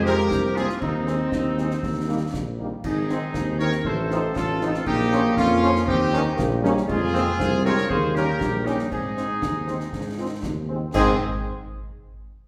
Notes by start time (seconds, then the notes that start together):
Already playing: F2 G#3
0.04 C3 F3 G#3 C4 G4 A#4, snare
0.31 C2 C4, concert bass drum, snare
0.55 C3 F3 G#3 A#3 C4 F4 G#4, snare
0.69 snare
0.80 D#2 C4 D#4, concert bass drum, crash
1.07 D#3 G#3 C4, snare
1.32 D#2, concert bass drum, snare
1.58 D#3 G#3 C4, snare
1.71 snare
1.83 D#2, concert bass drum, snare
2.08 D#3 G3 A#3 D#4
2.34 A#1, concert bass drum, snare
2.59 D#3 G3 A#3 D#4
2.83 G#1 D#4 G#4, concert bass drum, crash
3.09 D#3 C4 D#4, snare
3.33 D#2 C4, concert bass drum, snare
3.59 D#3 C4 D#4 A#4 C#5, snare
3.72 snare
3.84 A1 A3 A4 C5, concert bass drum
4.11 F3 C4 D#4, snare
4.35 A1 C#4 F4 A4, concert bass drum, snare
4.60 F3 C4 D#4, snare
4.74 snare
4.85 A#1 A#3 D#4 G4, concert bass drum, crash
5.12 F3 A#3 C#4, snare
5.36 F2 C#4 F4, concert bass drum, snare
5.62 F3 A#3 C#4, snare
5.75 snare
5.86 D#2 C4 D#4 G4, concert bass drum
6.13 D#3 A#3 C#4, snare
6.36 A#1 A#3, concert bass drum, snare
6.61 D#3 G3 A#3 C#4, snare
6.77 snare
6.87 F2 G#3 F4 G#4, concert bass drum, crash
7.12 C3 F3 G#3 A#3 C4, snare
7.38 C2 C4, concert bass drum, snare
7.64 C3 F3 G#3 C4 A#4 C#5, snare
7.78 snare
7.89 D#2 A#3 G#4 C5, concert bass drum
8.15 D#3 G3 C#4 G4 A#4, snare
8.41 A#1 G3, concert bass drum, snare
8.64 D#3 G3 A#3 C#4 D#4 G4, snare
8.79 snare
8.90 G#2 C4 D#4 G#4, concert bass drum, crash
9.16 D#3 G#3 C4, snare
9.41 D#2 C4, concert bass drum, snare
9.66 D#3 G#3 C4, snare
9.80 snare
9.93 G#2, concert bass drum, snare
10.17 D#3 G#3 C4 F4
10.42 D#2 D#4, concert bass drum, snare
10.69 D#3 G#3 C4
10.94 G#2 D#3 G#3 C4 G#4, concert bass drum, snare, crash